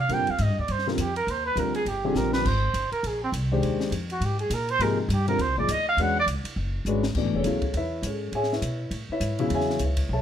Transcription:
0.00 F5
0.09 A#2 D3 G3 C4 F4 A#4, ride
0.13 G5
0.19 G2
0.27 D#2 F5, ride
0.39 G#2 D#5, hi-hat pedal, ride
0.48 G2
0.59 D#2 D5
0.68 G2 C5, ride
0.79 snare
0.86 D3 G3 C4 D#4 F4 A#4, snare
0.98 F2 G4, hi-hat pedal, ride
1.16 A#4, ride
1.27 D#2 C5, ride
1.46 B4
1.56 D2 D3 G3 C4 F4 A#4, hi-hat pedal, ride
1.75 G#4, ride
1.85 G1 G4, ride
2.04 D3 G3 C4 F4 G4 G#4
2.15 A#1 A#4, snare, hi-hat pedal
2.33 B4, snare
2.45 G#1 C5, kick, crash
2.74 G1, hi-hat pedal, ride
2.92 A#4, muted upright bass stroke, ride
3.03 A#1 G#4, ride
3.24 C4
3.32 C2, hi-hat pedal, ride
3.52 D#3 G#3 D4 G4 C5
3.62 D#2, ride
3.81 snare
3.91 F2, hi-hat pedal, ride
4.10 F#4, ride
4.21 G#2, ride
4.25 G4
4.39 G#4, ride
4.50 A#2, hi-hat pedal, ride
4.54 A#4
4.69 C5, ride
4.79 G#2 C3 F3 A#3 D#4 G#4 A#4, ride
5.01 D#4
5.09 G2, hi-hat pedal, ride
5.13 G4
5.28 D3 G3 C4 F4 A#4, ride
5.38 D#2 C5, ride
5.47 C2
5.57 G#1 F3 A#3 D#4 G#4 D5
5.68 D2 D#5, hi-hat pedal, ride
5.89 F5
5.97 E2 G#3 C#4 D4 F#4 B4, ride
6.02 F#5
6.20 D5
6.26 C#2, hi-hat pedal, ride
6.44 muted upright bass stroke, ride
6.56 F#1
6.85 G#1 G#3 C#4 D4 F#4 B4, hi-hat pedal
7.03 snare
7.15 A1 B2 E3 A3 D4, kick, crash
7.25 G#1
7.34 E1 C#4 G#4 A4 C#5
7.44 C#2 C#3 F#3 B3 E4, hi-hat pedal, ride
7.62 kick, ride
7.74 E2 B4 E5, ride
7.78 E4 C#5
8.02 G#2 C#5, hi-hat pedal, ride
8.07 C#4 G#4 A4
8.32 A2 G#4 C#5 E5 G#5, ride
8.43 snare
8.53 E4 B4 C#5 E5, snare
8.62 B2, hi-hat pedal, ride
8.91 A2, ride
9.09 E4 B4 C#5 E5, muted upright bass stroke
9.20 G#2, hi-hat pedal, ride
9.39 C#3 F#3 B3 E4, ride
9.50 E2, ride
9.54 G#4 C#5 E5 G#5
9.61 snare
9.70 snare
9.79 C#2, hi-hat pedal, ride
9.84 E4 B4 C#5 E5
9.97 kick, ride
10.09 B1 A5
10.13 A4 C#5 E5

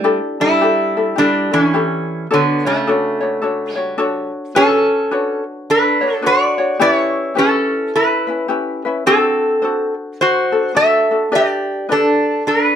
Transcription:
Already playing: G3
0.04 D4 E4 G4 A4
0.40 G3 D4 E4 A4
0.61 D4 E4 G4 A4
0.97 D4 E4 A4
1.16 G3 D4 E4 G4 A4
1.51 E3 C#4 D4 E4 A4
1.73 E4 G4 A4
2.31 D3 B3 D4 F#4 A4 C#5
2.65 C#3 A3 D4 F#4 C#5
2.87 D4 F#4 A4 C#5
3.21 D4 F#4 C#5
3.42 D4 F#4 A4 C#5
3.75 G3 D4 F#4 C#5
3.98 D4 F#4 A4 C#5
4.55 C#4 F#4 A4 B4 C#5
5.11 D4 F#4 B4 C#5
5.70 D4 B4
6.01 D4 F#4 C#5
6.15 A4
6.22 D4 F#4 B4 C#5
6.26 F#4 D5
6.58 D4 F#4 C#5
6.79 C#4 E4 G4 B4 D5
6.93 C#5
7.35 C#4 E4 G4 A4 B4
7.96 E4 B4
8.27 C#4 E4 B4
8.48 C#4 E4 G4 B4
8.85 C#4 E4 B4
9.06 C4 D4 F#4 A4 C5
9.62 D4 F#4 A4 C5
10.21 F#4 C5
10.52 D4 F#4 A4
10.74 D4 F#4 A4 C5 E5
11.11 D4 F#4 A4
11.32 D4 G4 B4 D5
11.36 G4
11.89 D4 G4 A4 B4 D5
12.47 D4 B4

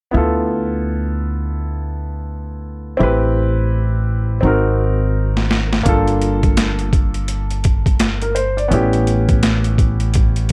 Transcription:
0.11 D2 B3 E4 F4
0.17 A4
2.97 A1 C4 E4 G4
3.03 B4
4.41 G#1 C4 D#4 F#4
4.47 A#4
5.37 snare
5.51 snare
5.73 snare
5.83 G1 A#3 D4 F4, kick, closed hi-hat
5.89 A4
6.07 closed hi-hat
6.22 closed hi-hat
6.43 kick, closed hi-hat
6.57 snare, closed hi-hat
6.79 closed hi-hat
6.93 kick, closed hi-hat
7.14 closed hi-hat
7.28 closed hi-hat
7.50 closed hi-hat
7.64 kick, closed hi-hat
7.86 kick, closed hi-hat
8.00 snare, closed hi-hat
8.22 A#4, closed hi-hat
8.35 C5, closed hi-hat
8.57 D5, closed hi-hat
8.68 A1 B3 C#4 E4, closed hi-hat
8.74 G4
8.93 closed hi-hat
9.07 closed hi-hat
9.29 kick, closed hi-hat
9.43 snare, closed hi-hat
9.64 closed hi-hat
9.78 kick, closed hi-hat
10.00 closed hi-hat
10.14 kick, closed hi-hat
10.36 closed hi-hat
10.49 closed hi-hat

